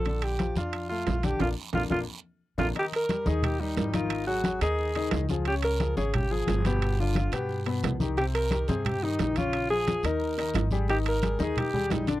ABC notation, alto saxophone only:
X:1
M:4/4
L:1/8
Q:1/4=177
K:Bb
V:1 name="Alto saxophone"
A G2 F2 F2 G | F z F F z3 F | [K:Eb] G B2 A G E2 F- | F _G2 A4 z |
G B2 A G A2 G- | G F2 G2 z3 | G B2 A G E2 F- | F A2 B4 z |
G B2 A G2 E D |]